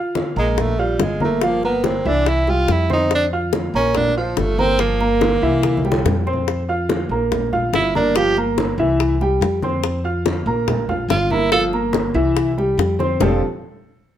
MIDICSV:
0, 0, Header, 1, 5, 480
1, 0, Start_track
1, 0, Tempo, 421053
1, 1618, Time_signature, 4, 2, 24, 8
1, 16163, End_track
2, 0, Start_track
2, 0, Title_t, "Grand piano"
2, 0, Program_c, 0, 0
2, 0, Note_on_c, 0, 65, 78
2, 0, Note_on_c, 0, 77, 71
2, 0, Note_on_c, 0, 89, 72
2, 333, Note_off_c, 0, 65, 0
2, 334, Note_off_c, 0, 77, 0
2, 337, Note_off_c, 0, 89, 0
2, 416, Note_on_c, 0, 70, 74
2, 418, Note_on_c, 0, 58, 75
2, 424, Note_on_c, 0, 82, 71
2, 810, Note_off_c, 0, 70, 0
2, 812, Note_off_c, 0, 58, 0
2, 815, Note_off_c, 0, 82, 0
2, 899, Note_on_c, 0, 65, 71
2, 901, Note_on_c, 0, 77, 75
2, 906, Note_on_c, 0, 89, 72
2, 1292, Note_off_c, 0, 65, 0
2, 1294, Note_off_c, 0, 77, 0
2, 1296, Note_off_c, 0, 89, 0
2, 1376, Note_on_c, 0, 58, 80
2, 1381, Note_on_c, 0, 70, 77
2, 1386, Note_on_c, 0, 82, 71
2, 1574, Note_off_c, 0, 58, 0
2, 1577, Note_off_c, 0, 70, 0
2, 1580, Note_off_c, 0, 82, 0
2, 1628, Note_on_c, 0, 53, 79
2, 1630, Note_on_c, 0, 65, 76
2, 1635, Note_on_c, 0, 77, 84
2, 1821, Note_off_c, 0, 53, 0
2, 1822, Note_off_c, 0, 65, 0
2, 1825, Note_off_c, 0, 77, 0
2, 1871, Note_on_c, 0, 70, 73
2, 1873, Note_on_c, 0, 58, 70
2, 1878, Note_on_c, 0, 82, 75
2, 2260, Note_off_c, 0, 70, 0
2, 2261, Note_off_c, 0, 58, 0
2, 2264, Note_off_c, 0, 82, 0
2, 2338, Note_on_c, 0, 52, 83
2, 2347, Note_on_c, 0, 64, 83
2, 2352, Note_on_c, 0, 76, 84
2, 2732, Note_off_c, 0, 52, 0
2, 2737, Note_off_c, 0, 64, 0
2, 2740, Note_off_c, 0, 76, 0
2, 2828, Note_on_c, 0, 67, 71
2, 2829, Note_on_c, 0, 55, 69
2, 2834, Note_on_c, 0, 79, 72
2, 3218, Note_off_c, 0, 67, 0
2, 3219, Note_off_c, 0, 55, 0
2, 3222, Note_off_c, 0, 79, 0
2, 3302, Note_on_c, 0, 60, 78
2, 3308, Note_on_c, 0, 72, 76
2, 3310, Note_on_c, 0, 84, 78
2, 3695, Note_off_c, 0, 60, 0
2, 3698, Note_off_c, 0, 72, 0
2, 3699, Note_off_c, 0, 84, 0
2, 3794, Note_on_c, 0, 65, 77
2, 3795, Note_on_c, 0, 77, 77
2, 3799, Note_on_c, 0, 89, 75
2, 4182, Note_off_c, 0, 65, 0
2, 4182, Note_off_c, 0, 77, 0
2, 4185, Note_off_c, 0, 89, 0
2, 4267, Note_on_c, 0, 58, 76
2, 4276, Note_on_c, 0, 70, 76
2, 4276, Note_on_c, 0, 82, 81
2, 4658, Note_off_c, 0, 58, 0
2, 4663, Note_off_c, 0, 70, 0
2, 4663, Note_off_c, 0, 82, 0
2, 4753, Note_on_c, 0, 65, 75
2, 4758, Note_on_c, 0, 77, 69
2, 4759, Note_on_c, 0, 89, 68
2, 5141, Note_off_c, 0, 65, 0
2, 5144, Note_off_c, 0, 77, 0
2, 5144, Note_off_c, 0, 89, 0
2, 5227, Note_on_c, 0, 58, 73
2, 5229, Note_on_c, 0, 70, 79
2, 5232, Note_on_c, 0, 82, 74
2, 5420, Note_off_c, 0, 58, 0
2, 5421, Note_off_c, 0, 70, 0
2, 5423, Note_off_c, 0, 82, 0
2, 5470, Note_on_c, 0, 53, 80
2, 5470, Note_on_c, 0, 65, 82
2, 5472, Note_on_c, 0, 77, 78
2, 5662, Note_off_c, 0, 53, 0
2, 5662, Note_off_c, 0, 65, 0
2, 5663, Note_off_c, 0, 77, 0
2, 5705, Note_on_c, 0, 58, 76
2, 5708, Note_on_c, 0, 70, 75
2, 5708, Note_on_c, 0, 82, 75
2, 6095, Note_off_c, 0, 58, 0
2, 6097, Note_off_c, 0, 82, 0
2, 6098, Note_off_c, 0, 70, 0
2, 6183, Note_on_c, 0, 52, 84
2, 6187, Note_on_c, 0, 64, 80
2, 6188, Note_on_c, 0, 76, 87
2, 6574, Note_off_c, 0, 52, 0
2, 6576, Note_off_c, 0, 64, 0
2, 6577, Note_off_c, 0, 76, 0
2, 6666, Note_on_c, 0, 55, 73
2, 6671, Note_on_c, 0, 67, 69
2, 6674, Note_on_c, 0, 79, 68
2, 7056, Note_off_c, 0, 55, 0
2, 7059, Note_off_c, 0, 67, 0
2, 7060, Note_off_c, 0, 79, 0
2, 7143, Note_on_c, 0, 60, 81
2, 7147, Note_on_c, 0, 72, 76
2, 7147, Note_on_c, 0, 84, 71
2, 7533, Note_off_c, 0, 60, 0
2, 7536, Note_off_c, 0, 72, 0
2, 7536, Note_off_c, 0, 84, 0
2, 7622, Note_on_c, 0, 65, 76
2, 7628, Note_on_c, 0, 77, 78
2, 7628, Note_on_c, 0, 89, 75
2, 8013, Note_off_c, 0, 65, 0
2, 8016, Note_off_c, 0, 77, 0
2, 8016, Note_off_c, 0, 89, 0
2, 8102, Note_on_c, 0, 58, 77
2, 8106, Note_on_c, 0, 70, 75
2, 8110, Note_on_c, 0, 82, 71
2, 8493, Note_off_c, 0, 58, 0
2, 8495, Note_off_c, 0, 70, 0
2, 8497, Note_off_c, 0, 82, 0
2, 8580, Note_on_c, 0, 65, 75
2, 8581, Note_on_c, 0, 77, 70
2, 8587, Note_on_c, 0, 89, 75
2, 8971, Note_off_c, 0, 65, 0
2, 8972, Note_off_c, 0, 77, 0
2, 8975, Note_off_c, 0, 89, 0
2, 9065, Note_on_c, 0, 58, 78
2, 9066, Note_on_c, 0, 82, 78
2, 9068, Note_on_c, 0, 70, 79
2, 9257, Note_off_c, 0, 58, 0
2, 9258, Note_off_c, 0, 82, 0
2, 9259, Note_off_c, 0, 70, 0
2, 9305, Note_on_c, 0, 53, 79
2, 9313, Note_on_c, 0, 65, 81
2, 9317, Note_on_c, 0, 77, 80
2, 9497, Note_off_c, 0, 53, 0
2, 9502, Note_off_c, 0, 65, 0
2, 9504, Note_off_c, 0, 77, 0
2, 9546, Note_on_c, 0, 70, 78
2, 9548, Note_on_c, 0, 58, 77
2, 9552, Note_on_c, 0, 82, 78
2, 9934, Note_off_c, 0, 70, 0
2, 9935, Note_off_c, 0, 58, 0
2, 9937, Note_off_c, 0, 82, 0
2, 10023, Note_on_c, 0, 52, 89
2, 10026, Note_on_c, 0, 64, 81
2, 10026, Note_on_c, 0, 76, 85
2, 10412, Note_off_c, 0, 52, 0
2, 10414, Note_off_c, 0, 64, 0
2, 10414, Note_off_c, 0, 76, 0
2, 10499, Note_on_c, 0, 55, 73
2, 10506, Note_on_c, 0, 67, 78
2, 10509, Note_on_c, 0, 79, 76
2, 10890, Note_off_c, 0, 55, 0
2, 10894, Note_off_c, 0, 67, 0
2, 10895, Note_off_c, 0, 79, 0
2, 10982, Note_on_c, 0, 60, 83
2, 10984, Note_on_c, 0, 72, 73
2, 10986, Note_on_c, 0, 84, 81
2, 11371, Note_off_c, 0, 60, 0
2, 11372, Note_off_c, 0, 72, 0
2, 11374, Note_off_c, 0, 84, 0
2, 11450, Note_on_c, 0, 65, 72
2, 11450, Note_on_c, 0, 77, 74
2, 11457, Note_on_c, 0, 89, 74
2, 11844, Note_off_c, 0, 65, 0
2, 11844, Note_off_c, 0, 77, 0
2, 11848, Note_off_c, 0, 89, 0
2, 11931, Note_on_c, 0, 58, 73
2, 11932, Note_on_c, 0, 70, 78
2, 11938, Note_on_c, 0, 82, 78
2, 12324, Note_off_c, 0, 58, 0
2, 12325, Note_off_c, 0, 70, 0
2, 12329, Note_off_c, 0, 82, 0
2, 12411, Note_on_c, 0, 65, 73
2, 12414, Note_on_c, 0, 77, 72
2, 12418, Note_on_c, 0, 89, 69
2, 12804, Note_off_c, 0, 65, 0
2, 12806, Note_off_c, 0, 77, 0
2, 12808, Note_off_c, 0, 89, 0
2, 12894, Note_on_c, 0, 58, 78
2, 12901, Note_on_c, 0, 70, 83
2, 12901, Note_on_c, 0, 82, 77
2, 13089, Note_off_c, 0, 58, 0
2, 13093, Note_off_c, 0, 70, 0
2, 13093, Note_off_c, 0, 82, 0
2, 13136, Note_on_c, 0, 53, 85
2, 13140, Note_on_c, 0, 65, 82
2, 13143, Note_on_c, 0, 77, 82
2, 13330, Note_off_c, 0, 53, 0
2, 13333, Note_off_c, 0, 65, 0
2, 13334, Note_off_c, 0, 77, 0
2, 13374, Note_on_c, 0, 58, 79
2, 13379, Note_on_c, 0, 70, 81
2, 13381, Note_on_c, 0, 82, 80
2, 13766, Note_off_c, 0, 58, 0
2, 13769, Note_off_c, 0, 70, 0
2, 13770, Note_off_c, 0, 82, 0
2, 13848, Note_on_c, 0, 52, 85
2, 13851, Note_on_c, 0, 64, 93
2, 13851, Note_on_c, 0, 76, 91
2, 14242, Note_off_c, 0, 52, 0
2, 14244, Note_off_c, 0, 64, 0
2, 14244, Note_off_c, 0, 76, 0
2, 14337, Note_on_c, 0, 55, 74
2, 14341, Note_on_c, 0, 67, 76
2, 14341, Note_on_c, 0, 79, 71
2, 14728, Note_off_c, 0, 55, 0
2, 14730, Note_off_c, 0, 67, 0
2, 14730, Note_off_c, 0, 79, 0
2, 14809, Note_on_c, 0, 60, 81
2, 14814, Note_on_c, 0, 72, 79
2, 14817, Note_on_c, 0, 84, 85
2, 15006, Note_off_c, 0, 60, 0
2, 15009, Note_off_c, 0, 72, 0
2, 15011, Note_off_c, 0, 84, 0
2, 15055, Note_on_c, 0, 53, 91
2, 15057, Note_on_c, 0, 62, 82
2, 15059, Note_on_c, 0, 60, 87
2, 15061, Note_on_c, 0, 65, 85
2, 15066, Note_on_c, 0, 69, 98
2, 15067, Note_on_c, 0, 67, 84
2, 15276, Note_off_c, 0, 53, 0
2, 15277, Note_off_c, 0, 62, 0
2, 15278, Note_off_c, 0, 60, 0
2, 15279, Note_off_c, 0, 65, 0
2, 15282, Note_off_c, 0, 67, 0
2, 15282, Note_off_c, 0, 69, 0
2, 16163, End_track
3, 0, Start_track
3, 0, Title_t, "Tenor saxophone"
3, 0, Program_c, 1, 66
3, 437, Note_on_c, 1, 56, 85
3, 687, Note_on_c, 1, 57, 90
3, 704, Note_off_c, 1, 56, 0
3, 906, Note_on_c, 1, 55, 81
3, 924, Note_off_c, 1, 57, 0
3, 1173, Note_on_c, 1, 56, 71
3, 1190, Note_off_c, 1, 55, 0
3, 1395, Note_off_c, 1, 56, 0
3, 1416, Note_on_c, 1, 57, 74
3, 1658, Note_on_c, 1, 58, 81
3, 1676, Note_off_c, 1, 57, 0
3, 1868, Note_off_c, 1, 58, 0
3, 1875, Note_on_c, 1, 59, 86
3, 2118, Note_on_c, 1, 60, 84
3, 2135, Note_off_c, 1, 59, 0
3, 2371, Note_on_c, 1, 62, 100
3, 2388, Note_off_c, 1, 60, 0
3, 2603, Note_on_c, 1, 64, 88
3, 2620, Note_off_c, 1, 62, 0
3, 2843, Note_on_c, 1, 65, 97
3, 2860, Note_off_c, 1, 64, 0
3, 3096, Note_on_c, 1, 64, 88
3, 3113, Note_off_c, 1, 65, 0
3, 3318, Note_off_c, 1, 64, 0
3, 3338, Note_on_c, 1, 63, 90
3, 3543, Note_off_c, 1, 63, 0
3, 3587, Note_on_c, 1, 62, 90
3, 3717, Note_off_c, 1, 62, 0
3, 4284, Note_on_c, 1, 61, 101
3, 4521, Note_on_c, 1, 62, 108
3, 4538, Note_off_c, 1, 61, 0
3, 4750, Note_off_c, 1, 62, 0
3, 4759, Note_on_c, 1, 53, 72
3, 4998, Note_on_c, 1, 57, 92
3, 5015, Note_off_c, 1, 53, 0
3, 5229, Note_on_c, 1, 60, 111
3, 5247, Note_off_c, 1, 57, 0
3, 5475, Note_on_c, 1, 58, 91
3, 5492, Note_off_c, 1, 60, 0
3, 6905, Note_off_c, 1, 58, 0
3, 8835, Note_on_c, 1, 64, 91
3, 9048, Note_off_c, 1, 64, 0
3, 9072, Note_on_c, 1, 62, 94
3, 9303, Note_on_c, 1, 67, 104
3, 9320, Note_off_c, 1, 62, 0
3, 9538, Note_off_c, 1, 67, 0
3, 12654, Note_on_c, 1, 65, 90
3, 12894, Note_on_c, 1, 64, 90
3, 12911, Note_off_c, 1, 65, 0
3, 13128, Note_off_c, 1, 64, 0
3, 13134, Note_on_c, 1, 69, 100
3, 13277, Note_off_c, 1, 69, 0
3, 16163, End_track
4, 0, Start_track
4, 0, Title_t, "Upright bass"
4, 0, Program_c, 2, 32
4, 413, Note_on_c, 2, 34, 96
4, 1090, Note_off_c, 2, 34, 0
4, 1137, Note_on_c, 2, 31, 85
4, 2269, Note_off_c, 2, 31, 0
4, 2341, Note_on_c, 2, 36, 97
4, 3015, Note_off_c, 2, 36, 0
4, 3060, Note_on_c, 2, 41, 87
4, 4190, Note_off_c, 2, 41, 0
4, 4260, Note_on_c, 2, 34, 92
4, 4934, Note_off_c, 2, 34, 0
4, 4980, Note_on_c, 2, 31, 91
4, 6109, Note_off_c, 2, 31, 0
4, 6178, Note_on_c, 2, 36, 93
4, 6852, Note_off_c, 2, 36, 0
4, 6897, Note_on_c, 2, 41, 89
4, 8026, Note_off_c, 2, 41, 0
4, 8087, Note_on_c, 2, 34, 90
4, 8765, Note_off_c, 2, 34, 0
4, 8812, Note_on_c, 2, 31, 87
4, 9942, Note_off_c, 2, 31, 0
4, 10007, Note_on_c, 2, 36, 93
4, 10684, Note_off_c, 2, 36, 0
4, 10728, Note_on_c, 2, 41, 90
4, 11859, Note_off_c, 2, 41, 0
4, 11924, Note_on_c, 2, 34, 96
4, 12601, Note_off_c, 2, 34, 0
4, 12637, Note_on_c, 2, 31, 94
4, 13774, Note_off_c, 2, 31, 0
4, 13844, Note_on_c, 2, 36, 97
4, 14522, Note_off_c, 2, 36, 0
4, 14564, Note_on_c, 2, 41, 94
4, 14991, Note_off_c, 2, 41, 0
4, 15049, Note_on_c, 2, 29, 98
4, 15273, Note_off_c, 2, 29, 0
4, 16163, End_track
5, 0, Start_track
5, 0, Title_t, "Drums"
5, 173, Note_on_c, 9, 60, 58
5, 173, Note_on_c, 9, 63, 85
5, 287, Note_off_c, 9, 60, 0
5, 287, Note_off_c, 9, 63, 0
5, 420, Note_on_c, 9, 63, 34
5, 534, Note_off_c, 9, 63, 0
5, 655, Note_on_c, 9, 63, 34
5, 655, Note_on_c, 9, 64, 83
5, 659, Note_on_c, 9, 60, 70
5, 769, Note_off_c, 9, 63, 0
5, 769, Note_off_c, 9, 64, 0
5, 773, Note_off_c, 9, 60, 0
5, 899, Note_on_c, 9, 63, 33
5, 1013, Note_off_c, 9, 63, 0
5, 1132, Note_on_c, 9, 63, 83
5, 1135, Note_on_c, 9, 60, 70
5, 1135, Note_on_c, 9, 61, 82
5, 1246, Note_off_c, 9, 63, 0
5, 1249, Note_off_c, 9, 60, 0
5, 1249, Note_off_c, 9, 61, 0
5, 1372, Note_on_c, 9, 63, 81
5, 1486, Note_off_c, 9, 63, 0
5, 1610, Note_on_c, 9, 63, 35
5, 1613, Note_on_c, 9, 60, 75
5, 1724, Note_off_c, 9, 63, 0
5, 1727, Note_off_c, 9, 60, 0
5, 1852, Note_on_c, 9, 63, 35
5, 1859, Note_on_c, 9, 60, 34
5, 1966, Note_off_c, 9, 63, 0
5, 1973, Note_off_c, 9, 60, 0
5, 2095, Note_on_c, 9, 63, 93
5, 2100, Note_on_c, 9, 60, 59
5, 2209, Note_off_c, 9, 63, 0
5, 2214, Note_off_c, 9, 60, 0
5, 2576, Note_on_c, 9, 63, 33
5, 2582, Note_on_c, 9, 60, 72
5, 2690, Note_off_c, 9, 63, 0
5, 2696, Note_off_c, 9, 60, 0
5, 2819, Note_on_c, 9, 60, 31
5, 2824, Note_on_c, 9, 63, 35
5, 2933, Note_off_c, 9, 60, 0
5, 2938, Note_off_c, 9, 63, 0
5, 3060, Note_on_c, 9, 60, 67
5, 3060, Note_on_c, 9, 61, 77
5, 3065, Note_on_c, 9, 63, 35
5, 3174, Note_off_c, 9, 60, 0
5, 3174, Note_off_c, 9, 61, 0
5, 3179, Note_off_c, 9, 63, 0
5, 3303, Note_on_c, 9, 60, 37
5, 3310, Note_on_c, 9, 63, 81
5, 3417, Note_off_c, 9, 60, 0
5, 3424, Note_off_c, 9, 63, 0
5, 3543, Note_on_c, 9, 60, 75
5, 3544, Note_on_c, 9, 63, 35
5, 3657, Note_off_c, 9, 60, 0
5, 3658, Note_off_c, 9, 63, 0
5, 3781, Note_on_c, 9, 63, 36
5, 3895, Note_off_c, 9, 63, 0
5, 4022, Note_on_c, 9, 60, 65
5, 4024, Note_on_c, 9, 63, 86
5, 4136, Note_off_c, 9, 60, 0
5, 4138, Note_off_c, 9, 63, 0
5, 4273, Note_on_c, 9, 63, 34
5, 4387, Note_off_c, 9, 63, 0
5, 4499, Note_on_c, 9, 60, 68
5, 4513, Note_on_c, 9, 63, 34
5, 4513, Note_on_c, 9, 64, 83
5, 4613, Note_off_c, 9, 60, 0
5, 4627, Note_off_c, 9, 63, 0
5, 4627, Note_off_c, 9, 64, 0
5, 4748, Note_on_c, 9, 63, 33
5, 4862, Note_off_c, 9, 63, 0
5, 4981, Note_on_c, 9, 60, 67
5, 4981, Note_on_c, 9, 61, 83
5, 4988, Note_on_c, 9, 63, 82
5, 5095, Note_off_c, 9, 60, 0
5, 5095, Note_off_c, 9, 61, 0
5, 5102, Note_off_c, 9, 63, 0
5, 5230, Note_on_c, 9, 63, 78
5, 5344, Note_off_c, 9, 63, 0
5, 5461, Note_on_c, 9, 60, 73
5, 5575, Note_off_c, 9, 60, 0
5, 5706, Note_on_c, 9, 60, 34
5, 5712, Note_on_c, 9, 63, 35
5, 5820, Note_off_c, 9, 60, 0
5, 5826, Note_off_c, 9, 63, 0
5, 5941, Note_on_c, 9, 60, 58
5, 5947, Note_on_c, 9, 63, 95
5, 6055, Note_off_c, 9, 60, 0
5, 6061, Note_off_c, 9, 63, 0
5, 6422, Note_on_c, 9, 60, 70
5, 6428, Note_on_c, 9, 63, 70
5, 6536, Note_off_c, 9, 60, 0
5, 6542, Note_off_c, 9, 63, 0
5, 6582, Note_on_c, 9, 63, 76
5, 6664, Note_on_c, 9, 60, 32
5, 6696, Note_off_c, 9, 63, 0
5, 6745, Note_on_c, 9, 63, 109
5, 6778, Note_off_c, 9, 60, 0
5, 6859, Note_off_c, 9, 63, 0
5, 6905, Note_on_c, 9, 60, 69
5, 6905, Note_on_c, 9, 61, 86
5, 6905, Note_on_c, 9, 64, 97
5, 7019, Note_off_c, 9, 60, 0
5, 7019, Note_off_c, 9, 61, 0
5, 7019, Note_off_c, 9, 64, 0
5, 7148, Note_on_c, 9, 60, 35
5, 7221, Note_on_c, 9, 64, 67
5, 7262, Note_off_c, 9, 60, 0
5, 7335, Note_off_c, 9, 64, 0
5, 7383, Note_on_c, 9, 63, 34
5, 7386, Note_on_c, 9, 60, 78
5, 7497, Note_off_c, 9, 63, 0
5, 7500, Note_off_c, 9, 60, 0
5, 7619, Note_on_c, 9, 63, 35
5, 7733, Note_off_c, 9, 63, 0
5, 7859, Note_on_c, 9, 63, 94
5, 7864, Note_on_c, 9, 60, 59
5, 7973, Note_off_c, 9, 63, 0
5, 7978, Note_off_c, 9, 60, 0
5, 8108, Note_on_c, 9, 63, 34
5, 8222, Note_off_c, 9, 63, 0
5, 8343, Note_on_c, 9, 60, 66
5, 8349, Note_on_c, 9, 63, 34
5, 8349, Note_on_c, 9, 64, 82
5, 8457, Note_off_c, 9, 60, 0
5, 8463, Note_off_c, 9, 63, 0
5, 8463, Note_off_c, 9, 64, 0
5, 8583, Note_on_c, 9, 63, 35
5, 8583, Note_on_c, 9, 64, 73
5, 8697, Note_off_c, 9, 63, 0
5, 8697, Note_off_c, 9, 64, 0
5, 8818, Note_on_c, 9, 60, 69
5, 8818, Note_on_c, 9, 61, 81
5, 8826, Note_on_c, 9, 63, 86
5, 8932, Note_off_c, 9, 60, 0
5, 8932, Note_off_c, 9, 61, 0
5, 8940, Note_off_c, 9, 63, 0
5, 9065, Note_on_c, 9, 63, 83
5, 9179, Note_off_c, 9, 63, 0
5, 9298, Note_on_c, 9, 60, 80
5, 9314, Note_on_c, 9, 63, 36
5, 9412, Note_off_c, 9, 60, 0
5, 9428, Note_off_c, 9, 63, 0
5, 9541, Note_on_c, 9, 60, 35
5, 9552, Note_on_c, 9, 63, 34
5, 9655, Note_off_c, 9, 60, 0
5, 9666, Note_off_c, 9, 63, 0
5, 9779, Note_on_c, 9, 60, 57
5, 9781, Note_on_c, 9, 63, 94
5, 9893, Note_off_c, 9, 60, 0
5, 9895, Note_off_c, 9, 63, 0
5, 10256, Note_on_c, 9, 63, 33
5, 10261, Note_on_c, 9, 60, 76
5, 10370, Note_off_c, 9, 63, 0
5, 10375, Note_off_c, 9, 60, 0
5, 10496, Note_on_c, 9, 63, 37
5, 10501, Note_on_c, 9, 60, 35
5, 10610, Note_off_c, 9, 63, 0
5, 10615, Note_off_c, 9, 60, 0
5, 10733, Note_on_c, 9, 63, 34
5, 10743, Note_on_c, 9, 60, 72
5, 10743, Note_on_c, 9, 61, 80
5, 10847, Note_off_c, 9, 63, 0
5, 10857, Note_off_c, 9, 60, 0
5, 10857, Note_off_c, 9, 61, 0
5, 10972, Note_on_c, 9, 63, 81
5, 10977, Note_on_c, 9, 60, 37
5, 11086, Note_off_c, 9, 63, 0
5, 11091, Note_off_c, 9, 60, 0
5, 11212, Note_on_c, 9, 60, 81
5, 11213, Note_on_c, 9, 63, 34
5, 11326, Note_off_c, 9, 60, 0
5, 11327, Note_off_c, 9, 63, 0
5, 11450, Note_on_c, 9, 63, 35
5, 11564, Note_off_c, 9, 63, 0
5, 11692, Note_on_c, 9, 60, 66
5, 11695, Note_on_c, 9, 63, 92
5, 11806, Note_off_c, 9, 60, 0
5, 11809, Note_off_c, 9, 63, 0
5, 11937, Note_on_c, 9, 63, 33
5, 12051, Note_off_c, 9, 63, 0
5, 12173, Note_on_c, 9, 60, 71
5, 12173, Note_on_c, 9, 63, 38
5, 12173, Note_on_c, 9, 64, 89
5, 12287, Note_off_c, 9, 60, 0
5, 12287, Note_off_c, 9, 63, 0
5, 12287, Note_off_c, 9, 64, 0
5, 12413, Note_on_c, 9, 63, 37
5, 12413, Note_on_c, 9, 64, 77
5, 12527, Note_off_c, 9, 63, 0
5, 12527, Note_off_c, 9, 64, 0
5, 12654, Note_on_c, 9, 63, 86
5, 12657, Note_on_c, 9, 60, 75
5, 12657, Note_on_c, 9, 61, 87
5, 12768, Note_off_c, 9, 63, 0
5, 12771, Note_off_c, 9, 60, 0
5, 12771, Note_off_c, 9, 61, 0
5, 12887, Note_on_c, 9, 63, 79
5, 13001, Note_off_c, 9, 63, 0
5, 13128, Note_on_c, 9, 63, 36
5, 13132, Note_on_c, 9, 60, 77
5, 13242, Note_off_c, 9, 63, 0
5, 13246, Note_off_c, 9, 60, 0
5, 13367, Note_on_c, 9, 63, 36
5, 13374, Note_on_c, 9, 60, 37
5, 13481, Note_off_c, 9, 63, 0
5, 13488, Note_off_c, 9, 60, 0
5, 13600, Note_on_c, 9, 63, 93
5, 13617, Note_on_c, 9, 60, 61
5, 13714, Note_off_c, 9, 63, 0
5, 13731, Note_off_c, 9, 60, 0
5, 14093, Note_on_c, 9, 63, 35
5, 14097, Note_on_c, 9, 60, 75
5, 14207, Note_off_c, 9, 63, 0
5, 14211, Note_off_c, 9, 60, 0
5, 14336, Note_on_c, 9, 63, 36
5, 14347, Note_on_c, 9, 60, 34
5, 14450, Note_off_c, 9, 63, 0
5, 14461, Note_off_c, 9, 60, 0
5, 14578, Note_on_c, 9, 63, 38
5, 14582, Note_on_c, 9, 60, 73
5, 14582, Note_on_c, 9, 61, 83
5, 14692, Note_off_c, 9, 63, 0
5, 14696, Note_off_c, 9, 60, 0
5, 14696, Note_off_c, 9, 61, 0
5, 14812, Note_on_c, 9, 63, 76
5, 14821, Note_on_c, 9, 60, 36
5, 14926, Note_off_c, 9, 63, 0
5, 14935, Note_off_c, 9, 60, 0
5, 15054, Note_on_c, 9, 61, 113
5, 15059, Note_on_c, 9, 64, 104
5, 15168, Note_off_c, 9, 61, 0
5, 15173, Note_off_c, 9, 64, 0
5, 16163, End_track
0, 0, End_of_file